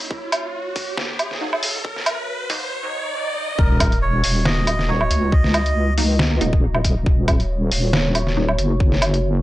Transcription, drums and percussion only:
0.11 kick
0.32 closed hi-hat, low woodblock
0.76 kick, open hi-hat
0.98 snare
1.19 closed hi-hat, low woodblock
1.31 snare
1.53 low woodblock
1.63 open hi-hat
1.85 kick
1.96 snare
2.06 closed hi-hat, low woodblock
2.50 kick, open hi-hat
3.59 kick
3.80 kick, closed hi-hat, low woodblock
3.92 closed hi-hat
4.24 open hi-hat
4.46 snare
4.67 closed hi-hat, low woodblock
4.79 snare
5.01 low woodblock
5.11 closed hi-hat
5.32 kick
5.44 snare
5.54 closed hi-hat, low woodblock
5.66 closed hi-hat
5.98 open hi-hat
6.19 snare
6.41 closed hi-hat
6.53 kick
6.75 low woodblock
6.84 kick, closed hi-hat
7.06 kick
7.28 kick, closed hi-hat, low woodblock
7.40 closed hi-hat
7.72 open hi-hat
7.93 snare
8.15 closed hi-hat, low woodblock
8.27 snare
8.49 low woodblock
8.59 closed hi-hat
8.80 kick
8.92 snare
9.02 closed hi-hat, low woodblock
9.14 closed hi-hat

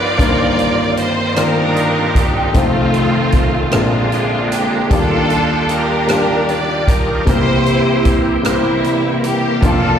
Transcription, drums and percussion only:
0.19 kick, closed hi-hat
0.59 closed hi-hat
0.97 closed hi-hat
1.36 cross-stick, closed hi-hat
1.76 closed hi-hat
2.15 kick, closed hi-hat
2.54 kick, closed hi-hat
2.94 closed hi-hat
3.32 kick, closed hi-hat
3.71 cross-stick, closed hi-hat
4.12 closed hi-hat
4.52 closed hi-hat
4.91 kick, closed hi-hat
5.30 closed hi-hat
5.69 closed hi-hat
6.08 cross-stick, closed hi-hat
6.49 closed hi-hat
6.88 kick, closed hi-hat
7.27 kick, closed hi-hat
7.66 closed hi-hat
8.05 kick, closed hi-hat
8.45 cross-stick, closed hi-hat
8.84 closed hi-hat
9.24 closed hi-hat
9.62 kick, closed hi-hat

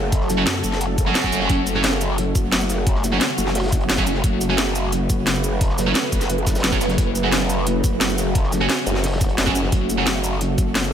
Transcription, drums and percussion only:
0.04 cross-stick
0.12 kick, closed hi-hat
0.21 snare
0.29 snare, closed hi-hat, shaker
0.38 cross-stick, snare
0.46 snare, closed hi-hat
0.63 closed hi-hat, shaker
0.72 snare
0.81 closed hi-hat
0.98 kick, closed hi-hat, shaker
1.07 closed hi-hat
1.14 snare, closed hi-hat
1.24 kick, cross-stick, shaker
1.32 closed hi-hat, shaker
1.40 snare
1.49 kick, closed hi-hat
1.66 closed hi-hat, shaker
1.74 cross-stick, snare
1.84 snare, closed hi-hat
1.92 snare
2.01 closed hi-hat, shaker
2.18 closed hi-hat
2.35 kick, closed hi-hat, shaker
2.52 snare, closed hi-hat
2.61 snare, shaker
2.69 snare, closed hi-hat, shaker
2.78 cross-stick
2.87 kick, closed hi-hat
2.95 snare
3.04 snare, closed hi-hat, shaker
3.12 cross-stick, snare
3.21 snare, closed hi-hat
3.38 closed hi-hat, shaker
3.47 snare
3.55 snare, closed hi-hat
3.59 snare, closed hi-hat
3.63 snare, closed hi-hat
3.68 snare, closed hi-hat
3.72 kick, closed hi-hat, shaker
3.80 closed hi-hat
3.89 snare, closed hi-hat
3.98 kick, cross-stick, shaker
4.07 closed hi-hat, shaker
4.15 snare
4.23 kick, closed hi-hat
4.41 closed hi-hat, shaker
4.49 cross-stick, snare
4.58 snare, closed hi-hat
4.67 snare
4.75 closed hi-hat, shaker
4.92 closed hi-hat
5.09 kick, closed hi-hat, shaker
5.27 snare, closed hi-hat
5.35 snare, shaker
5.44 closed hi-hat, shaker
5.52 cross-stick
5.61 kick, closed hi-hat
5.70 snare
5.78 snare, closed hi-hat, shaker
5.87 cross-stick, snare
5.94 snare, closed hi-hat
6.12 kick, closed hi-hat, shaker
6.21 snare, closed hi-hat, shaker
6.29 closed hi-hat
6.38 closed hi-hat
6.47 kick, snare, closed hi-hat, shaker
6.55 snare, closed hi-hat, shaker
6.59 snare, closed hi-hat
6.64 snare, closed hi-hat
6.72 kick, cross-stick, shaker
6.81 snare, closed hi-hat, shaker
6.89 snare, closed hi-hat
6.98 kick, closed hi-hat
7.15 closed hi-hat, shaker
7.24 cross-stick, snare
7.32 snare, closed hi-hat
7.41 snare
7.49 closed hi-hat, shaker
7.66 closed hi-hat
7.84 kick, closed hi-hat, shaker
8.00 snare, closed hi-hat
8.09 snare, shaker
8.18 snare, closed hi-hat, shaker
8.27 cross-stick
8.35 kick, closed hi-hat
8.44 snare
8.52 snare, closed hi-hat, shaker
8.61 cross-stick, snare
8.69 snare, closed hi-hat
8.86 closed hi-hat, shaker
8.95 snare
9.04 snare, closed hi-hat
9.07 snare, closed hi-hat
9.12 snare, closed hi-hat
9.16 snare, closed hi-hat
9.21 kick, closed hi-hat, shaker
9.29 closed hi-hat
9.38 snare, closed hi-hat
9.47 kick, cross-stick, shaker
9.55 closed hi-hat, shaker
9.63 snare
9.72 kick, closed hi-hat
9.89 closed hi-hat, shaker
9.98 cross-stick, snare
10.07 snare, closed hi-hat
10.15 snare
10.24 closed hi-hat, shaker
10.41 closed hi-hat
10.58 kick, closed hi-hat, shaker
10.75 snare, closed hi-hat
10.84 snare, shaker

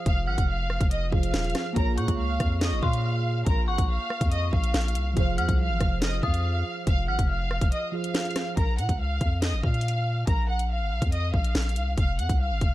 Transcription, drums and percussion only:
0.06 kick, closed hi-hat
0.38 kick, closed hi-hat
0.70 cross-stick
0.81 kick, closed hi-hat
0.91 closed hi-hat
1.12 kick
1.23 closed hi-hat
1.34 snare, closed hi-hat
1.39 closed hi-hat
1.44 closed hi-hat
1.50 closed hi-hat
1.55 cross-stick, snare, closed hi-hat
1.76 kick, closed hi-hat
1.98 closed hi-hat
2.08 kick, closed hi-hat
2.40 kick, cross-stick, closed hi-hat
2.61 snare, closed hi-hat
2.83 kick
2.93 closed hi-hat
3.46 kick, closed hi-hat
3.78 kick, closed hi-hat
4.10 cross-stick
4.21 kick, closed hi-hat
4.32 closed hi-hat
4.53 kick
4.64 closed hi-hat
4.74 snare, closed hi-hat
4.81 closed hi-hat
4.88 closed hi-hat
4.95 closed hi-hat
5.17 kick, closed hi-hat
5.38 closed hi-hat
5.49 kick, closed hi-hat
5.81 kick, cross-stick, closed hi-hat
6.02 snare, closed hi-hat
6.23 kick
6.34 closed hi-hat
6.87 kick, closed hi-hat
7.19 kick, closed hi-hat
7.51 cross-stick
7.61 kick, closed hi-hat
7.72 closed hi-hat
8.04 closed hi-hat
8.15 snare, closed hi-hat
8.20 closed hi-hat
8.25 closed hi-hat
8.31 closed hi-hat
8.36 cross-stick, snare, closed hi-hat
8.57 kick, closed hi-hat
8.79 closed hi-hat
8.89 kick, closed hi-hat
9.21 kick, closed hi-hat
9.42 snare, closed hi-hat
9.63 kick
9.74 closed hi-hat
9.81 closed hi-hat
9.88 closed hi-hat
10.27 kick, closed hi-hat
10.59 closed hi-hat
11.02 kick, closed hi-hat
11.12 closed hi-hat
11.34 kick
11.44 closed hi-hat
11.55 snare, closed hi-hat
11.62 closed hi-hat
11.69 closed hi-hat
11.76 closed hi-hat
11.98 kick, closed hi-hat
12.19 closed hi-hat
12.29 kick, closed hi-hat
12.61 kick, closed hi-hat

